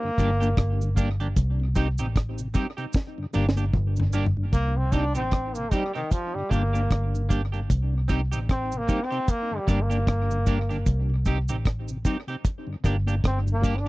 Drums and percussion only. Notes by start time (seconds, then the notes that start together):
0.18 kick, closed hi-hat, cabasa
0.41 closed hi-hat, cabasa
0.57 kick, cross-stick, closed hi-hat
0.81 cabasa
0.97 kick, closed hi-hat, cabasa
1.20 closed hi-hat
1.36 kick, closed hi-hat, cabasa
1.75 kick, closed hi-hat, cabasa
1.98 closed hi-hat, cabasa
2.16 kick, cross-stick, closed hi-hat
2.38 cabasa
2.54 kick, closed hi-hat, cabasa
2.78 closed hi-hat
2.93 kick, snare, cabasa
3.34 cabasa
3.49 snare
3.57 cabasa
3.73 kick, mid tom
3.96 floor tom, cabasa
4.13 cabasa
4.26 floor tom
4.53 kick, closed hi-hat, cabasa
4.92 kick, closed hi-hat, cabasa
5.15 closed hi-hat, cabasa
5.31 kick, cross-stick, closed hi-hat
5.55 cabasa
5.71 kick, closed hi-hat, cabasa
5.95 closed hi-hat
6.11 kick, closed hi-hat, cabasa
6.51 kick, closed hi-hat, cabasa
6.75 closed hi-hat, cabasa
6.91 kick, cross-stick, closed hi-hat
7.15 cabasa
7.30 kick, closed hi-hat, cabasa
7.54 closed hi-hat
7.70 kick, closed hi-hat, cabasa
8.09 kick, closed hi-hat, cabasa
8.32 closed hi-hat, cabasa
8.49 kick, cross-stick, closed hi-hat
8.72 cabasa
8.89 kick, closed hi-hat, cabasa
9.12 closed hi-hat
9.28 kick, closed hi-hat, cabasa
9.68 kick, cross-stick, closed hi-hat, cabasa
9.91 closed hi-hat, cabasa
10.07 kick, cross-stick, closed hi-hat
10.31 cabasa
10.46 kick, closed hi-hat, cabasa
10.71 closed hi-hat
10.86 kick, closed hi-hat, cabasa
11.25 kick, closed hi-hat, cabasa
11.49 closed hi-hat, cabasa
11.65 kick, cross-stick, closed hi-hat
11.88 cabasa
12.05 kick, closed hi-hat, cabasa
12.28 closed hi-hat
12.45 kick, closed hi-hat, cabasa
12.84 kick, cross-stick, closed hi-hat, cabasa
13.08 closed hi-hat, cabasa
13.24 kick, cross-stick, closed hi-hat
13.47 cabasa
13.64 kick, closed hi-hat, cabasa